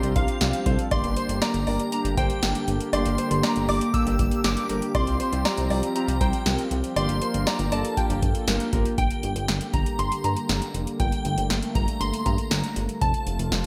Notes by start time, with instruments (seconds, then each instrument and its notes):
Already playing: analog synth pad F3 G3 D4 G4, analog polysynth C4 F4 G4
0.03 analog synth bass C2, closed hi-hat
0.16 analog synth bass C2, analog polysynth C4 F4 G4, synth bell F5, kick, closed hi-hat
0.28 closed hi-hat
0.41 analog synth bass C2, analog polysynth C4 F4 G4, snare, closed hi-hat
0.53 closed hi-hat
0.66 analog synth bass C2, analog polysynth C4 F4 A4, grand piano C5, kick, closed hi-hat
0.79 closed hi-hat
0.91 analog synth bass G1, analog synth pad D3 A#3, analog polysynth A#3 D4 G4, grand piano D5, synth bell C6, kick, closed hi-hat
1.04 analog synth bass G1, closed hi-hat
1.17 analog polysynth A#3 D4 G4, grand piano C5, closed hi-hat
1.29 analog synth bass G1, closed hi-hat
1.42 analog polysynth A#3 D4 G4, grand piano D5, synth bell A#5, snare, closed hi-hat
1.54 analog synth bass G1, closed hi-hat
1.67 analog synth bass G1, analog polysynth A#3 D4 A#4, grand piano D5, open hi-hat
1.80 closed hi-hat
1.92 analog polysynth A#3 D4 G4, synth bell A#5, closed hi-hat
2.05 analog synth bass G1, closed hi-hat
2.17 analog synth bass G1, analog polysynth A#3 D4 G4, grand piano C5, synth bell G5, kick, closed hi-hat
2.30 closed hi-hat
2.43 analog synth bass G1, analog polysynth A#3 D4 G4, snare, closed hi-hat
2.55 closed hi-hat
2.68 analog synth bass G1, analog polysynth A#3 D4 G4, closed hi-hat
2.81 closed hi-hat
2.93 analog synth bass G1, analog polysynth A#3 D4 G4, grand piano D5, synth bell C6, closed hi-hat
3.06 analog synth bass G1, closed hi-hat
3.18 analog polysynth A#3 D4 G4, grand piano C5, closed hi-hat
3.31 analog synth bass G1, closed hi-hat
3.43 analog polysynth A#3 D4 G4, grand piano D5, synth bell A#5, snare, closed hi-hat
3.56 analog synth bass G1, closed hi-hat
3.69 analog synth bass G1, analog polysynth A#3 D4 G4, grand piano D5, synth bell D6, open hi-hat
3.81 closed hi-hat
3.94 analog polysynth A#3 D4 G4, synth bell E6, kick, closed hi-hat
4.06 analog synth bass G1, closed hi-hat
4.19 analog synth bass G1, analog polysynth A#3 D4 G4, kick, closed hi-hat
4.31 closed hi-hat
4.44 analog synth bass G1, analog polysynth A#3 D4 G4, synth bell D6, snare, closed hi-hat
4.57 closed hi-hat
4.69 analog synth bass G1, analog polysynth A#3 D4 G4, grand piano A#4, closed hi-hat
4.82 closed hi-hat
4.95 analog synth bass C2, analog synth pad F3 G3 C4, analog polysynth C4 F4 G4, grand piano D5, synth bell C6, kick, closed hi-hat
5.07 analog synth bass C2, closed hi-hat
5.20 analog polysynth C4 F4 G4, grand piano C5, closed hi-hat
5.32 analog synth bass C2, closed hi-hat
5.45 analog polysynth C4 F4 G4, grand piano D5, synth bell A#5, snare, closed hi-hat
5.57 analog synth bass C2, closed hi-hat
5.70 analog synth bass C2, analog polysynth C4 F4 G4, grand piano D5, open hi-hat
5.83 closed hi-hat
5.96 analog polysynth C4 F4 G4, synth bell A#5, closed hi-hat
6.08 analog synth bass C2, closed hi-hat
6.21 analog synth bass C2, analog polysynth C4 F4 G4, grand piano C5, synth bell G5, kick, closed hi-hat
6.33 closed hi-hat
6.46 analog synth bass C2, analog polysynth C4 F4 A#4, snare, closed hi-hat
6.59 closed hi-hat
6.71 analog synth bass C2, analog polysynth C4 F4 G4, closed hi-hat
6.84 closed hi-hat
6.96 analog synth bass G1, analog polysynth A#3 F4 G4, analog synth pad A#3 D4, grand piano D5, synth bell C6, closed hi-hat
7.09 analog synth bass G1, closed hi-hat
7.22 analog polysynth A#3 F4 A#4, grand piano C5, closed hi-hat
7.34 analog synth bass G1, closed hi-hat
7.47 analog polysynth A#3 F4 G4, grand piano D5, synth bell A#5, snare, closed hi-hat
7.59 analog synth bass G1, closed hi-hat
7.72 analog synth bass G1, analog polysynth A#3 F4 A4, grand piano D5, synth bell A5, closed hi-hat
7.85 closed hi-hat
7.97 analog polysynth A#3 F4 G4, synth bell G5, kick, closed hi-hat
8.10 analog synth bass G1, closed hi-hat
8.22 analog synth bass G1, analog polysynth A#3 F4 A4, kick, closed hi-hat
8.35 closed hi-hat
8.48 analog synth bass G1, analog polysynth A#3 F4 A#4, snare, closed hi-hat
8.60 closed hi-hat
8.73 analog synth bass G1, analog polysynth A#3 F4 G4, grand piano A#4, kick, closed hi-hat
8.85 closed hi-hat
8.98 analog synth bass G1, analog synth pad D3 G3 A#3 G4, synth bell G5, kick, closed hi-hat
9.11 closed hi-hat
9.23 analog synth bass G1, closed hi-hat
9.36 analog synth bass G1, closed hi-hat
9.48 analog synth bass G1, snare, closed hi-hat
9.61 closed hi-hat
9.74 analog synth bass G1, synth bell A#5, kick, closed hi-hat
9.86 closed hi-hat
9.99 analog synth bass G1, synth bell C6, closed hi-hat
10.12 closed hi-hat
10.24 analog synth bass G2, synth bell A#5, closed hi-hat
10.37 closed hi-hat
10.49 analog synth bass G1, snare, closed hi-hat
10.62 closed hi-hat
10.74 analog synth bass F1, closed hi-hat
10.87 closed hi-hat
11.00 analog synth bass G1, analog synth pad A3, synth bell G5, kick, closed hi-hat
11.12 closed hi-hat
11.25 analog synth bass G1, closed hi-hat
11.38 analog synth bass G1, closed hi-hat
11.50 analog synth bass G1, snare, closed hi-hat
11.62 closed hi-hat
11.75 analog synth bass G1, synth bell A#5, kick, closed hi-hat
11.88 closed hi-hat
12.01 analog synth bass G1, synth bell C6, closed hi-hat
12.14 closed hi-hat
12.26 analog synth bass G2, synth bell A#5, kick, closed hi-hat
12.38 closed hi-hat
12.51 analog synth bass G1, snare, closed hi-hat
12.64 closed hi-hat
12.76 analog synth bass G1, closed hi-hat
12.89 closed hi-hat
13.01 analog synth bass F1, analog synth pad C3 F3 A3 F4, synth bell A5, kick, closed hi-hat
13.14 closed hi-hat
13.27 analog synth bass F1, closed hi-hat
13.39 analog synth bass F1, closed hi-hat
13.52 analog synth bass F1, snare, closed hi-hat